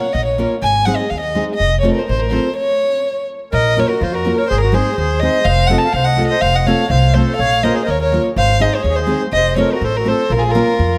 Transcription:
0.00 C#5
0.13 A#1 D#5
0.25 C#5
0.38 A#3 C#4 F4 A#4
0.62 G#1 G#5
0.86 G#3 C4 D#4 G#4 F#5
0.96 D#5
1.10 D#2 F5
1.20 D#5
1.35 G#3 C4 D#4 G#4
1.54 D#5
1.60 F1
1.81 A3 C4 F4 C#5
1.85 A4
1.93 A#4
1.98 A#4 C5
2.08 A1 C5
2.18 A#4
2.31 A3 C4 F4 A4 C5
2.56 C#5
3.52 A#1 A#4 D#5
3.76 A#3 C#4 F4 A#4 C#5
3.88 F#4 A#4
4.00 F2 F4 C5
4.11 F#4 A#4
4.25 A#3 C#4 F4 A#4
4.36 A#4 C#5
4.48 G#1 G#4 C5
4.61 F#4 A#4
4.72 G#3 C4 D#4 G#4 C5
4.96 D#2 G#4 C5
5.20 G#3 C4 D#4 G#4 C5 D#5
5.45 F1 C5 F5
5.67 A3 C4 F4 A4 F#5
5.72 D#5
5.78 A5
5.85 F5
5.93 C2 C5 F5
6.04 D#5 F#5
6.17 A3 C4 F4 A4
6.28 C5 D#5
6.41 F1 C5 F5
6.53 D#5 F#5
6.66 A3 C4 F4 A4 C#5 F5
6.90 C2 C5 F5
7.14 A3 C4 F4 A4 C5
7.37 A#1 C#5 F5
7.63 A#3 C#4 F4 A#4 C5 D#5
7.73 G#4 C5
7.84 A#4 C5 D#5
7.88 D#2 C#5
8.00 A#4 C#5
8.12 A#3 C#4 F4 A#4
8.36 G#1 C5 F5
8.59 G#3 C4 D#4 G#4 C5 D#5
8.75 G#4 C5
8.83 D#2 C#5
8.89 G#4
8.96 C5
9.01 G#4
9.07 G#3 C4 D#4 G#4
9.32 F1 D#5
9.37 C5
9.56 A3 C4 F4 A4 A#4 C#5
9.73 F#4 A#4
9.81 A1 A4 C5
9.97 F#4 A#4
10.04 A3 C4 F4 A4 C5
10.09 A4
10.30 A#1 F4 A#4
10.36 F4 G#4
10.48 F4 A#4
10.55 A#3 C#4 F4 A#4
10.79 F2

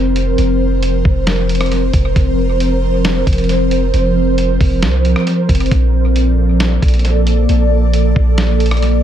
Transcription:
Already playing: F1 F3 C4 A#4 C5
0.16 closed hi-hat
0.38 F1, closed hi-hat
0.83 closed hi-hat
1.05 F1, kick
1.27 snare, closed hi-hat
1.49 closed hi-hat
1.55 closed hi-hat
1.61 cross-stick, closed hi-hat
1.66 closed hi-hat
1.72 closed hi-hat
1.93 F1, kick, closed hi-hat
2.16 F1, kick, closed hi-hat
2.60 closed hi-hat
3.05 snare, closed hi-hat
3.27 F1, kick, closed hi-hat
3.33 closed hi-hat
3.38 closed hi-hat
3.44 closed hi-hat
3.49 closed hi-hat
3.71 closed hi-hat
3.94 F1, closed hi-hat
4.38 closed hi-hat
4.61 F1, kick, open hi-hat
4.82 C2, snare, closed hi-hat
5.05 closed hi-hat
5.16 cross-stick
5.27 closed hi-hat
5.49 F1, kick, closed hi-hat
5.55 closed hi-hat
5.60 closed hi-hat
5.66 closed hi-hat
5.71 A#1 A#3 A4 D5, kick, closed hi-hat
6.16 closed hi-hat
6.60 snare, closed hi-hat
6.82 A#1, kick, closed hi-hat
6.88 closed hi-hat
6.94 closed hi-hat
6.99 closed hi-hat
7.05 closed hi-hat
7.27 closed hi-hat
7.49 A#1, closed hi-hat
7.93 closed hi-hat
8.16 A#1, kick
8.38 snare, closed hi-hat
8.60 closed hi-hat
8.66 closed hi-hat
8.71 cross-stick, closed hi-hat
8.77 closed hi-hat
8.82 closed hi-hat

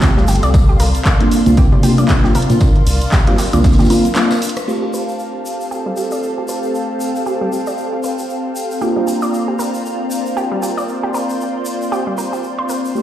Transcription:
Already playing: A3 C4 F4 G4 A4 F5 A5 C6
0.02 D2 G4, kick, snare, clap, closed hi-hat, tambourine, shaker
0.17 C2 G3 A3 C4 F4 G4, snare
0.28 G1 G4, snare, open hi-hat, tambourine, shaker
0.35 closed hi-hat
0.43 C2 D5, closed hi-hat, shaker
0.54 D4 A#4 D5 C6, kick, closed hi-hat, tambourine, shaker
0.69 G4
0.80 C2 A#4, open hi-hat, tambourine, shaker
0.87 A#4
0.95 snare, closed hi-hat, shaker
1.05 kick, snare, clap, tambourine, shaker
1.21 A#3 C4 D4 F4, closed hi-hat, high conga
1.31 open hi-hat, tambourine, shaker
1.46 C2 A#3 C4 D4 F4, closed hi-hat, low conga, shaker
1.57 G4, kick, closed hi-hat, tambourine, shaker
1.72 C3 G3, low conga
1.83 A#3 C4 D4 F4 G4, open hi-hat, tambourine, shaker
1.98 A#3 C4 D4 F4 D5, closed hi-hat, high conga, shaker
2.08 kick, snare, clap, closed hi-hat, tambourine, shaker
2.24 A#1 A#3 C4 D4 F4 G4, snare, high conga
2.35 C3 A#4, open hi-hat, tambourine, shaker
2.42 closed hi-hat
2.50 A#2 A#3 C4 D4 F4, snare, closed hi-hat, shaker
2.60 kick, closed hi-hat, tambourine, shaker
2.76 closed hi-hat, low conga
2.87 C2, open hi-hat, shaker
3.01 closed hi-hat, shaker
3.12 G4, kick, snare, clap, tambourine, shaker
3.27 G3 A#3 C4 D4 F4, closed hi-hat, high conga
3.38 G4, clap, open hi-hat, tambourine, shaker
3.53 C2 A#3 C4 D4 F4 D5, closed hi-hat, low conga, shaker
3.64 kick, snare, closed hi-hat, tambourine, shaker
3.72 snare, tambourine
3.79 A#3 C4 D4 F4 G4, snare, tambourine, low conga
3.85 snare, tambourine
3.90 A#3 C4 D4 F4 A#4, open hi-hat, tambourine, shaker
4.05 closed hi-hat, high conga, shaker
4.15 A#3 C4 D4 F4, cross-stick, snare, clap, closed hi-hat, tambourine, shaker
4.31 cross-stick, snare, tambourine
4.42 open hi-hat, shaker
4.49 closed hi-hat
4.56 cross-stick, closed hi-hat, shaker
4.68 A3 C4 F4 G4 C5 F5 A5, crash, shaker
4.83 G4 A4
4.94 B4, shaker
5.08 shaker
5.19 shaker
5.46 shaker
5.60 shaker
5.71 G4, shaker
5.86 G3
5.97 G4 G5, shaker
6.11 D5, shaker
6.23 shaker
6.38 G4
6.48 B4, shaker
6.63 shaker
6.75 shaker
7.00 shaker
7.16 shaker
7.26 G4, shaker
7.41 G3
7.52 G4, shaker
7.67 D5, shaker
7.78 shaker
7.93 G4
8.03 B4, shaker
8.18 shaker
8.29 shaker
8.56 shaker
8.71 shaker
8.81 A#3 C4 D4 F4 G4 C5 D5 A#5, shaker
8.96 G3
9.05 G4 A#4, shaker
9.22 D5, shaker
9.34 shaker
9.48 G4
9.53 D5
9.59 A#4, shaker
9.74 shaker
9.86 shaker
10.11 shaker
10.26 shaker
10.37 G4, shaker
10.52 G3
10.63 G4, shaker
10.78 D5, shaker
10.88 C6, shaker
11.03 G4
11.14 A#4, shaker
11.29 shaker
11.41 shaker
11.65 shaker
11.82 shaker
11.92 G4, shaker
12.07 G3
12.18 A#4, shaker
12.33 G4, shaker
12.44 shaker
12.59 C5
12.69 A#4, shaker
12.85 shaker
12.95 A3 C4 F4 G4 F5 A5, shaker

